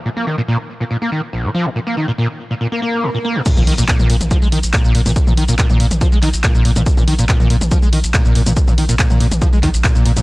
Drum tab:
CC |----------------|----------------|x---------------|----------------|
HH |----------------|----------------|x-oxx-oxx-oxx-ox|x-oxx-oxx-oxx-ox|
SH |----------------|----------------|xx-xxx-xxx-xxx-x|xx-xxx-xxx-xxx-x|
CP |----------------|----------------|----x-------x---|----x-----x-x---|
T2 |----------------|----------------|-o---o-o-------o|-o---o-o-------o|
BD |----------------|----------------|o---o---o---o---|o---o---o---o---|

CC |----------------|----------------|
HH |x-oxx-oxx-oxx-ox|x-oxx-oxx-oxx-ox|
SH |xx-xxx-xxx-xxx-x|xx-xxx-xxx-xxx-x|
CP |----x-------x---|----x-----x-x---|
T2 |-o---o-o-------o|-o---o-o-------o|
BD |o---o---o---o---|o---o---o-o-o---|